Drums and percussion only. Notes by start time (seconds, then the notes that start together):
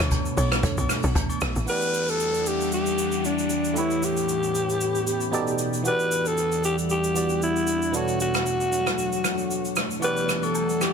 0.00 cross-stick, high agogo
0.11 kick, hi-hat pedal, low woodblock, shaker
0.25 shaker
0.37 open hi-hat, high agogo, shaker
0.52 cross-stick, shaker
0.63 kick, hi-hat pedal, shaker
0.78 high agogo, shaker
0.89 cross-stick, open hi-hat, shaker
1.03 shaker
1.15 kick, hi-hat pedal, low woodblock, shaker
1.30 high agogo, shaker
1.41 cross-stick, open hi-hat, shaker
1.56 shaker
1.68 shaker
1.82 shaker
1.94 shaker
2.08 shaker
2.20 shaker
2.34 shaker
2.46 shaker
2.61 shaker
2.72 shaker
2.86 shaker
2.98 shaker
3.12 shaker
3.25 shaker
3.39 shaker
3.50 shaker
3.64 shaker
3.76 shaker
3.90 shaker
4.03 shaker
4.17 shaker
4.29 shaker
4.43 shaker
4.55 shaker
4.69 shaker
4.81 shaker
4.95 shaker
5.07 shaker
5.20 shaker
5.33 shaker
5.47 shaker
5.58 shaker
5.73 shaker
5.85 shaker
5.99 shaker
6.12 shaker
6.25 shaker
6.37 shaker
6.52 shaker
6.64 shaker
6.78 shaker
6.90 shaker
7.04 shaker
7.16 shaker
7.29 shaker
7.42 shaker
7.56 shaker
7.67 shaker
7.82 shaker
7.94 shaker
8.08 shaker
8.20 shaker
8.34 cross-stick, shaker
8.46 shaker
8.60 shaker
8.72 shaker
8.87 cross-stick, shaker
8.98 shaker
9.12 shaker
9.24 cross-stick, shaker
9.38 shaker
9.51 shaker
9.65 shaker
9.76 cross-stick, shaker
9.91 shaker
10.02 high agogo, shaker
10.17 shaker
10.29 cross-stick, shaker
10.43 high agogo, shaker
10.55 low woodblock, shaker
10.69 shaker
10.81 cross-stick, high agogo, shaker